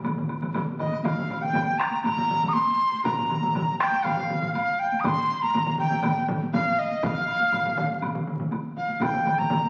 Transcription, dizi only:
0.79 D#5
1.04 F5
1.42 G5
1.78 A#5
2.03 A#5
2.48 D#6
2.54 C6
3.04 A#5
3.79 G5
4.04 F5
4.54 F5
4.79 G5
5.00 D#6
5.06 C6
5.42 A#5
5.79 G5
6.53 F5
6.79 D#5
7.04 F5
8.77 F5
9.02 G5
9.39 A#5

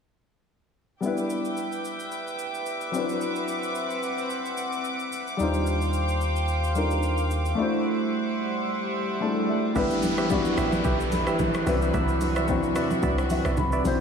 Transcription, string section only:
1.03 B4 E5 G5 D6
2.94 C4 F#5
5.39 C5 F5 G5
7.58 C5 E5 F#5
9.76 E3 G3 D4 E4 B4
11.67 C3 F#4

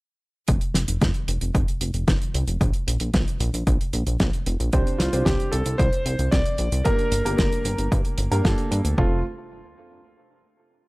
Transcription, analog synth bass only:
0.48 F1
0.75 F1
0.88 F1
1.02 F1
1.28 F1
1.41 F1
1.55 F1
1.81 F1
1.94 F1
2.08 F1
2.34 C2
2.48 F1
2.61 A#1
2.87 A#1
3.01 A#1
3.14 A#1
3.40 A#1
3.54 A#1
3.67 A#1
3.94 A#1
4.07 A#1
4.20 A#1
4.47 F1
4.60 A#1
4.73 C2
5.00 C2
5.13 C2
5.26 C2
5.53 C2
5.66 C2
5.79 C2
6.06 C2
6.19 C2
6.32 C2
6.59 A#1
6.72 C2
6.86 G1
7.12 G1
7.25 G1
7.39 G1
7.65 G1
7.78 G1
7.92 G2
8.18 G1
8.32 G2
8.45 G1
8.71 G2
8.85 D2
8.98 F1

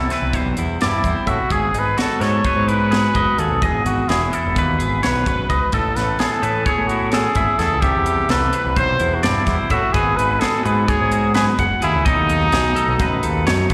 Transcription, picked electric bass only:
0.22 C2
0.34 B1
0.58 E2
0.82 G2
1.04 E2
1.27 A2
1.51 G#1
1.74 G#1
2.21 G#2
2.56 G#2
3.15 F#1
3.38 D#2
3.51 B1
3.62 E1
3.74 G#1
4.09 E1
4.46 E1
4.57 D#2
4.82 G#1
5.05 B1
5.27 G#1
5.50 C#2
5.73 A1
5.97 A1
6.43 A2
6.78 A2
7.36 G#1
7.59 E2
7.72 C#2
7.82 C2
7.96 E2
8.29 C2
8.66 C2
8.77 B1
9.00 E2
9.23 G2
9.47 E2
9.71 A2
9.94 G#1
10.19 G#1
10.66 G#2
11.01 G#2
11.59 F#1
11.83 D#2
11.96 C#2
12.05 B1
12.17 D#2
12.53 B1
12.88 B1
12.99 A1
13.25 D#2
13.47 F#2
13.71 D#2

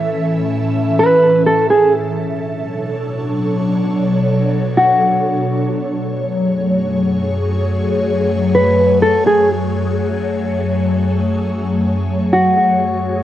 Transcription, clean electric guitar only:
0.99 B4
1.46 A4
1.70 G#4
4.77 F#4
8.55 B4
9.02 A4
9.27 G#4
12.33 F#4

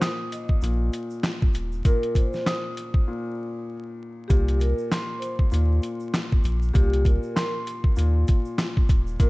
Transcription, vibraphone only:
0.32 D#5
1.85 A#4
2.16 C5
4.28 G4
4.59 A#4
5.19 C5
6.74 G4
7.06 A#4
9.21 A#4

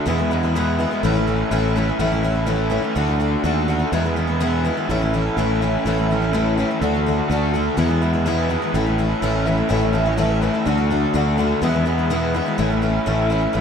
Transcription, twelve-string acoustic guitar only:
0.06 E2 B2 E3 G#3 B3 E4
0.18 E3 G#3 B3 E4
0.31 E3 G#3 B3 E4
0.43 E3 G#3 B3 E4
0.55 E2 B2 E3 G#3 B3 E4
0.79 E3 G#3 B3 E4
0.91 E3 G#3 B3 E4
1.03 A2 E3 A3 C#4 E4
1.15 A3 C#4 E4
1.27 E3 A3 C#4 E4
1.51 A2 E3 A3 C#4 E4
1.76 E3 A3 C#4 E4
1.87 A3 C#4 E4
2.00 A2 E3 A3 C#4 E4
2.12 A3 C#4 E4
2.23 E3 A3 C#4 E4
2.35 A3 C#4 E4
2.46 A2 E3 A3 C#4 E4
2.70 E3 A3 C#4 E4
2.82 A3 C#4 E4
2.95 D3 A3 D4 F#4
3.08 A3 D4 F#4
3.20 D3 A3 D4 F#4
3.44 D3 A3 D4 F#4
3.68 D3 A3 D4 F#4
3.79 A3 D4 F#4
3.93 E2 B2 E3 G#3 B3 E4
4.04 E3 G#3 B3 E4
4.16 E3 G#3 B3 E4
4.27 E3 G#3 B3 E4
4.40 E2 B2 E3 G#3 B3 E4
4.64 E3 G#3 B3 E4
4.77 E3 G#3 B3 E4
4.90 A2 E3 A3 C#4 E4
5.01 A3 C#4 E4
5.13 E3 A3 C#4 E4
5.38 A2 E3 A3 C#4 E4
5.62 E3 A3 C#4 E4
5.86 A2 E3 A3 C#4 E4
5.98 A3 C#4 E4
6.10 E3 A3 C#4 E4
6.22 A3 C#4 E4
6.33 A2 E3 A3 C#4 E4
6.58 E3 A3 C#4 E4
6.70 A3 C#4 E4
6.82 D3 A3 D4 F#4
6.95 A3 D4 F#4
7.06 D3 A3 D4 F#4
7.31 D3 A3 D4 F#4
7.54 D3 A3 D4 F#4
7.77 E2 B2 E3 G#3 B3 E4
7.89 E3 G#3 B3 E4
8.02 E3 G#3 B3 E4
8.13 E3 G#3 B3 E4
8.26 E2 B2 E3 G#3 B3 E4
8.49 E3 G#3 B3 E4
8.62 E3 G#3 B3 E4
8.74 A2 E3 A3 C#4 E4
8.86 A3 C#4 E4
8.98 E3 A3 C#4 E4
9.22 A2 E3 A3 C#4 E4
9.46 E3 A3 C#4 E4
9.57 A3 C#4 E4
9.69 A2 E3 A3 C#4 E4
9.81 A3 C#4 E4
9.93 E3 A3 C#4 E4
10.06 A3 C#4 E4
10.17 A2 E3 A3 C#4 E4
10.42 E3 A3 C#4 E4
10.53 A3 C#4 E4
10.66 D3 A3 D4 F#4
10.78 A3 D4 F#4
10.90 D3 A3 D4 F#4
11.13 D3 A3 D4 F#4
11.38 D3 A3 D4 F#4
11.61 E2 B2 E3 G#3 B3 E4
11.74 E3 G#3 B3 E4
11.85 E3 G#3 B3 E4
11.98 E3 G#3 B3 E4
12.10 E2 B2 E3 G#3 B3 E4
12.34 E3 G#3 B3 E4
12.46 E3 G#3 B3 E4
12.58 A2 E3 A3 C#4 E4
12.70 A3 C#4 E4
12.82 E3 A3 C#4 E4
13.06 A2 E3 A3 C#4 E4
13.30 E3 A3 C#4 E4
13.41 A3 C#4 E4
13.53 A2 E3 G#3 C#4 E4

